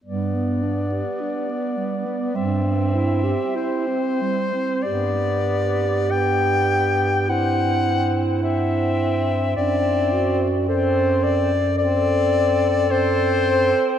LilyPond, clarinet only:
\new Staff \with { instrumentName = "Clarinet" } { \time 4/4 \key g \major \tempo 4 = 52 g16 b16 d'16 g'16 d'16 b16 g16 b16 g16 c'16 e'16 g'16 e'16 c'16 g16 c'16 | g'2 e'2 | d'8 fis'8 a'8. r16 a'2 | }